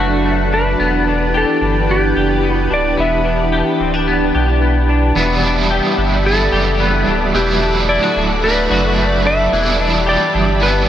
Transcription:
Already playing: sub bass F#1, clean electric guitar E3 A3 D4 F#4, string machine F#3 D4 A4 B4, electric slide guitar F#5
0.25 clean electric guitar A3
0.53 clean electric guitar D4, electric slide guitar B4
0.80 sub bass E1, string machine E3 G4 B4, clean electric guitar B3
1.07 clean electric guitar D4
1.34 clean electric guitar G4, electric slide guitar A4
1.61 sub bass G1, clean electric guitar D4
1.89 clean electric guitar B3, electric slide guitar G4
2.16 sub bass F#1, clean electric guitar G4
2.44 clean electric guitar B3
2.48 electric slide guitar F#4
2.70 sub bass D1, clean electric guitar D4, electric slide guitar D5
2.97 sub bass E1, clean electric guitar B3, string machine D4, electric slide guitar E5
3.25 clean electric guitar D4
3.52 clean electric guitar G4
3.80 sub bass D1, clean electric guitar C4
3.94 clean electric guitar D4
4.08 clean electric guitar B3
4.35 sub bass B1, clean electric guitar G4
4.62 clean electric guitar B3
4.89 clean electric guitar D4
5.15 sub bass E1, overdriven electric guitar E2 B2 E3 G3 D4 E4, clean electric guitar B3, string machine G4 D5 E5 B5
5.42 overdriven electric guitar E3 G3 D4 E4, clean electric guitar D4
5.70 clean electric guitar G4
5.98 sub bass G1, clean electric guitar D4
6.23 overdriven electric guitar E3 G3, clean electric guitar B3, electric slide guitar A4
6.28 overdriven electric guitar D4 E4
6.52 sub bass F#1, clean electric guitar G4
6.80 clean electric guitar B3
7.07 sub bass D1, clean electric guitar D4
7.34 sub bass E1, overdriven electric guitar E2 B2 F#3 A3 D4 E4, clean electric guitar E3, electric slide guitar G4, string machine A4 F#5
7.61 overdriven electric guitar F#3 A3 D4 E4, clean electric guitar D4
7.89 clean electric guitar E4, electric slide guitar D5
8.03 clean electric guitar F#4
8.16 sub bass D1, clean electric guitar D4
8.42 overdriven electric guitar F#3 A3, clean electric guitar A3, electric slide guitar B4
8.47 overdriven electric guitar D4 E4
8.70 sub bass F#1, clean electric guitar F#4
8.98 clean electric guitar A3
9.25 clean electric guitar D4, electric slide guitar E5
9.53 sub bass E1, overdriven electric guitar E2 B2 E3 G3 D4 E4, clean electric guitar E3, string machine G4 E5
9.79 overdriven electric guitar E3 G3 D4 E4, clean electric guitar D4
9.88 electric slide guitar D5
10.06 clean electric guitar G4, electric slide guitar D5
10.34 sub bass G1, clean electric guitar D4
10.60 overdriven electric guitar E3 G3, clean electric guitar B3, electric slide guitar B4
10.65 overdriven electric guitar D4 E4

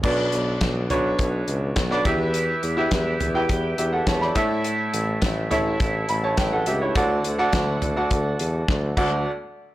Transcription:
0.03 tuba B1, upright piano B2 D4 F#4 B4 D5, kick, crash
0.32 tuba B1, closed hi-hat
0.61 tuba B1, kick, snare, closed hi-hat
0.90 tuba B1, upright piano D4 F#4 B4 C#5, closed hi-hat, floor tom
1.19 tuba B1, kick, closed hi-hat
1.48 tuba C#2, closed hi-hat
1.76 tuba B1, kick, snare, closed hi-hat
1.91 upright piano D4 F#4 B4 D5, snare
2.05 tuba E2, upright piano E3 E4 G4 B4 E5, kick, closed hi-hat, floor tom
2.34 closed hi-hat
2.63 tuba E2, closed hi-hat
2.77 upright piano E4 G4 B4 E5
2.91 tuba E2, kick, snare, closed hi-hat
3.20 tuba E2, closed hi-hat, floor tom
3.34 upright piano E4 G4 B4 G5
3.49 tuba E2, kick, closed hi-hat
3.78 tuba E2, upright piano G4 E5, closed hi-hat
3.92 upright piano A4 F#5
4.07 tuba E2, upright piano C#5 A5, kick, snare, closed hi-hat
4.21 upright piano D5 B5, snare
4.35 upright piano A2 E4 A4 C#5 E5, kick, closed hi-hat
4.64 closed hi-hat
4.93 tuba A1, closed hi-hat
5.22 tuba A1, kick, snare, closed hi-hat
5.51 tuba A1, upright piano E4 A4 C#5 E5, closed hi-hat, floor tom
5.80 tuba A1, kick, closed hi-hat
6.09 tuba A1, upright piano B5, closed hi-hat
6.24 upright piano C#5 A5
6.37 tuba A1, upright piano B4 G5, kick, snare, closed hi-hat
6.52 upright piano A4 F#5
6.66 tuba C#2, upright piano G4 E5, closed hi-hat
6.82 upright piano E4 C#5
6.95 tuba D2, upright piano D3 F#4 A4 D5 F#5, kick, closed hi-hat
7.24 tuba D2, closed hi-hat
7.38 upright piano F#4 A4 D5 F#5
7.53 tuba D2, kick, snare, closed hi-hat
7.82 tuba D2, closed hi-hat, floor tom
7.96 upright piano F#4 A4 D5 F#5
8.11 tuba D2, kick, closed hi-hat
8.39 tuba E2, closed hi-hat
8.68 tuba D2, kick, snare
8.97 upright piano D2 F#4 A4 D5 F#5, tuba D2, kick, crash

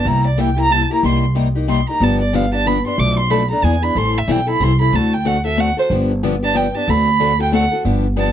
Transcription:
0.05 upright bass C2, steel-string acoustic guitar C3 G3 A#3 E4 G4, violin A#5
0.27 violin D5
0.37 steel-string acoustic guitar C3 G3 A#3 E4 G4, violin G5
0.56 steel-string acoustic guitar A#3 E4 G4
0.60 violin A#5
0.70 steel-string acoustic guitar C3 G3 A#3 E4 G4, violin A5
0.90 steel-string acoustic guitar A#3 E4 G4, violin A#5
1.03 upright bass C2, steel-string acoustic guitar C3 G3 A#3 D#4 G4, violin C6
1.35 steel-string acoustic guitar C3 G3 A#3 D#4 G4
1.55 steel-string acoustic guitar A#3 D#4 G4
1.68 steel-string acoustic guitar C3 G3 A#3 D#4 G4, violin C6
1.89 steel-string acoustic guitar A#3 D#4 G4, violin A#5
2.00 upright bass G1, steel-string acoustic guitar D3 F3 B3 D4 G4, violin A5
2.22 violin D5
2.33 steel-string acoustic guitar D3 F3 B3 D4 G4, violin F5
2.52 steel-string acoustic guitar B3 D4 G4, violin A5
2.66 steel-string acoustic guitar D3 F3 B3 D4 G4, violin B5
2.86 steel-string acoustic guitar B3 D4 G4, violin C6
2.98 upright bass B1, steel-string acoustic guitar B2 F3 A3 D4 A4, violin D6
3.19 violin C6
3.30 steel-string acoustic guitar B2 F3 A3 D4 A4, violin B5
3.51 steel-string acoustic guitar A3 D4 A4, violin A#5
3.63 upright bass E2, steel-string acoustic guitar E3 B3 D4 G#4, violin G#5
3.82 steel-string acoustic guitar B3 D4 G#4, violin B5
3.95 upright bass A1, steel-string acoustic guitar E3 G3 C4 E4 A4, violin C6
4.18 violin E5
4.28 upright bass B1, steel-string acoustic guitar E3 G3 C4 E4 A4, violin G5
4.47 steel-string acoustic guitar C4 E4 A4, violin B5
4.60 upright bass C2, steel-string acoustic guitar E3 G3 C4 E4 A4, violin C6
4.80 steel-string acoustic guitar C4 E4 A4, violin B5
4.92 upright bass D2, steel-string acoustic guitar D3 A3 C4 F#4 A4, violin A5
5.14 violin G5
5.25 steel-string acoustic guitar D3 A3 C4 F#4 A4, violin F#5
5.45 steel-string acoustic guitar C4 F#4 A4, violin E5
5.57 steel-string acoustic guitar D3 A3 C4 F#4 A4, violin F#5
5.77 steel-string acoustic guitar C4 F#4 A4, violin C5
5.90 upright bass G1, steel-string acoustic guitar D3 F3 B3 D4 G4
6.23 steel-string acoustic guitar D3 F3 B3 D4 G4
6.43 steel-string acoustic guitar B3 D4 G4, violin A5
6.53 steel-string acoustic guitar D3 F3 B3 D4 G4, violin G5
6.75 steel-string acoustic guitar B3 D4 G4, violin A5
6.88 upright bass D2, steel-string acoustic guitar D3 A3 C4 F#4 A4, violin B5
7.19 steel-string acoustic guitar D3 A3 C4 F#4 A4
7.39 steel-string acoustic guitar C4 F#4 A4, violin G5
7.52 steel-string acoustic guitar D3 A3 C4 F#4 A4, violin F#5
7.72 steel-string acoustic guitar C4 F#4 A4
7.85 upright bass G1, steel-string acoustic guitar D3 F3 B3 D4 G4
8.16 steel-string acoustic guitar D3 F3 B3 D4 G4, violin A5

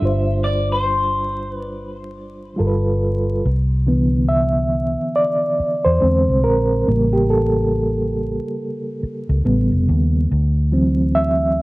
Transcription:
Already playing: reed electric piano G3, clean electric guitar E5
0.00 fingered electric bass G1, reed electric piano D4 F4
0.05 reed electric piano C5
0.44 clean electric guitar D5
0.72 clean electric guitar C5
1.52 clean electric guitar B4
2.56 fingered electric bass G1, reed electric piano G3 F4 A4 A#4
2.67 reed electric piano B4
3.45 fingered electric bass C2
3.87 reed electric piano D3 E3 B3
4.28 reed electric piano E5
5.16 reed electric piano D5
5.60 muted fingered electric bass stroke
5.85 fingered electric bass E2, reed electric piano C5
6.01 fingered electric bass E2, reed electric piano D3 G#3 C4
6.29 fingered electric bass C2
6.44 fingered electric bass A#1, reed electric piano A#4
6.87 fingered electric bass A1, reed electric piano C#3 G3 A#3
7.13 reed electric piano G4
7.30 reed electric piano A4
9.03 muted fingered electric bass stroke
9.29 fingered electric bass C#2
9.44 fingered electric bass A1, reed electric piano C#3 G3 B3
9.72 fingered electric bass F1
9.89 fingered electric bass D#2
10.31 fingered electric bass D2
10.72 reed electric piano E3 F#3 C4
11.15 reed electric piano E5

